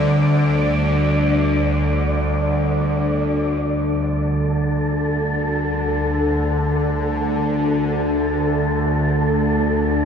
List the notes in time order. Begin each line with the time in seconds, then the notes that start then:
Already playing: D2 D3 G3 D4 A4 C5 D5
3.62 D2 D3 A4
7.19 D5